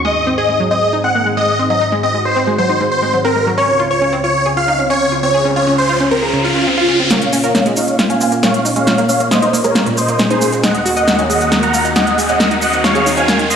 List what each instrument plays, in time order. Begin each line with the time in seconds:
Already playing: analog synth pad D#3
0.05 analog synth pad G#2 C4 G#4, synth pluck G#3, supersaw synth D#5
0.27 synth pluck C4
0.38 synth pluck G#4, supersaw synth D#5
0.49 synth pluck G#3
0.60 synth pluck F#3
0.71 synth pluck C4, supersaw synth D#5
0.93 synth pluck D#4
1.04 synth pluck C4, supersaw synth F#5
1.15 synth pluck A#3
1.26 synth pluck G#3
1.37 synth pluck G#3, supersaw synth D#5
1.59 synth pluck C4
1.70 synth pluck F#3, supersaw synth D#5
1.81 synth pluck D#4, analog synth pad F#4
1.92 synth pluck G#3
2.03 synth pluck C4, supersaw synth D#5
2.14 synth pluck G#3
2.25 supersaw synth C5
2.36 synth pluck C4
2.47 synth pluck G#3
2.58 synth pluck F#3, supersaw synth C5
2.69 synth pluck D#4
2.80 synth pluck G#2
2.92 supersaw synth C5
3.03 synth pluck G#3
3.14 synth pluck F#3
3.25 synth pluck C4, supersaw synth A#4
3.36 synth pluck G#3
3.47 synth pluck F#3
3.58 analog synth pad C#2 C#3 F4, synth pluck C#4, supersaw synth C#5, riser
3.80 synth pluck F4
3.91 synth pluck C#5, supersaw synth C#5
4.02 synth pluck C#4
4.13 synth pluck C4
4.24 synth pluck F4, supersaw synth C#5
4.46 synth pluck G#4
4.57 synth pluck F4, supersaw synth F5
4.68 synth pluck D#4
4.79 synth pluck C#4
4.90 synth pluck C#4, supersaw synth C#5
5.12 synth pluck F4
5.23 synth pluck C4, supersaw synth C#5
5.34 analog synth pad C#4, synth pluck G#4
5.45 synth pluck C#4
5.56 synth pluck F4, supersaw synth C#5
5.67 synth pluck C#4
5.78 supersaw synth C5
5.89 synth pluck F4
6.00 synth pluck C#4
6.11 synth pluck C4, supersaw synth A#4
6.22 synth pluck G#4
6.33 synth pluck C#3
6.44 supersaw synth F4
6.55 synth pluck C#4
6.67 synth pluck C4
6.77 supersaw synth F4, synth pluck F4
6.89 synth pluck C#4
7.00 synth pluck C4
7.10 analog synth pad A#2 A#3 C#4 F4, synth pluck A#3, supersaw synth C#5 F5, snare, closed hi-hat, riser, cabasa
7.22 closed hi-hat
7.33 synth pluck C#4, open hi-hat, cabasa
7.44 synth pluck A#4, supersaw synth C#5 F5, closed hi-hat, cabasa
7.55 synth pluck A#3, snare, closed hi-hat, cabasa
7.66 synth pluck G#3, closed hi-hat
7.76 synth pluck D#4, supersaw synth C#5 F5, open hi-hat, cabasa
7.88 closed hi-hat, cabasa
7.99 synth pluck F4, snare, closed hi-hat, cabasa
8.10 synth pluck C#4, supersaw synth F5 G#5, closed hi-hat
8.21 synth pluck C4, open hi-hat, cabasa
8.32 synth pluck A#3, closed hi-hat, cabasa
8.43 synth pluck A#3, supersaw synth C#5 F5, snare, closed hi-hat, cabasa
8.54 closed hi-hat
8.65 synth pluck D#4, open hi-hat, cabasa
8.76 synth pluck G#3, supersaw synth C#5 F5, closed hi-hat, cabasa
8.87 synth pluck F4, snare, closed hi-hat, cabasa
8.98 synth pluck A#3, closed hi-hat
9.09 synth pluck C#4, supersaw synth C#5 F5, open hi-hat, cabasa
9.20 synth pluck A#3, closed hi-hat, cabasa
9.31 supersaw synth C5 D#5, snare, closed hi-hat, cabasa
9.42 synth pluck D#4, closed hi-hat
9.53 synth pluck A#3, open hi-hat, cabasa
9.64 synth pluck G#3, supersaw synth A#4 C#5, closed hi-hat, cabasa
9.75 synth pluck F4, snare, closed hi-hat, cabasa
9.86 synth pluck A#2, closed hi-hat
9.97 supersaw synth C5 D#5, open hi-hat, cabasa
10.08 synth pluck A#3, closed hi-hat, cabasa
10.19 synth pluck G#3, snare, closed hi-hat, cabasa
10.30 synth pluck D#4, supersaw synth G#4 C5, closed hi-hat
10.41 synth pluck A#3, open hi-hat, cabasa
10.53 synth pluck G#3, closed hi-hat, cabasa
10.63 analog synth pad D#2 D#3 A#3 F#4, synth pluck D#4, supersaw synth D#5 F#5, snare, closed hi-hat, cabasa
10.75 closed hi-hat
10.86 synth pluck F#4, open hi-hat, cabasa
10.96 supersaw synth D#5 F#5, synth pluck D#5, closed hi-hat, cabasa
11.08 synth pluck D#4, snare, closed hi-hat, cabasa
11.19 synth pluck C#4, closed hi-hat
11.30 synth pluck G#4, supersaw synth D#5 F#5, open hi-hat, cabasa
11.41 closed hi-hat, cabasa
11.52 synth pluck A#4, snare, closed hi-hat, cabasa
11.63 synth pluck F#4, supersaw synth F#5 A#5, closed hi-hat
11.74 synth pluck F4, open hi-hat, cabasa
11.85 synth pluck D#4, closed hi-hat, cabasa
11.96 synth pluck D#4, supersaw synth D#5 F#5, snare, closed hi-hat, cabasa
12.07 closed hi-hat
12.18 synth pluck G#4, open hi-hat, cabasa
12.29 synth pluck C#4, supersaw synth D#5 F#5, closed hi-hat, cabasa
12.40 analog synth pad C4, synth pluck A#4, snare, closed hi-hat, cabasa
12.51 synth pluck D#4, closed hi-hat
12.62 synth pluck F#4, supersaw synth D#5 F#5, open hi-hat, cabasa
12.73 synth pluck D#4, closed hi-hat, cabasa
12.84 supersaw synth C#5 F5, snare, closed hi-hat, cabasa
12.95 synth pluck G#4, closed hi-hat
13.06 synth pluck D#4, open hi-hat, cabasa
13.17 synth pluck C#4, supersaw synth F5 G#5, closed hi-hat, cabasa
13.28 synth pluck A#4, snare, closed hi-hat, cabasa
13.39 synth pluck D#3, closed hi-hat
13.50 supersaw synth D#5 C6, open hi-hat, cabasa